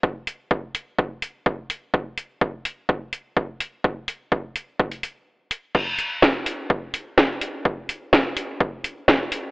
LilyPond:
\new DrumStaff \with { instrumentName = "Drums" } \drummode { \time 4/4 \tempo 4 = 126 bd8 hho8 bd8 hho8 bd8 hho8 bd8 hho8 | bd8 hho8 bd8 hho8 bd8 hho8 bd8 hho8 | bd8 hho8 bd8 hho8 bd16 hho16 hho8 r8 hho8 | <cymc bd>8 hho8 <bd sn>8 hho8 bd8 hho8 <bd sn>8 hho8 |
bd8 hho8 <bd sn>8 hho8 bd8 hho8 <bd sn>8 hho8 | }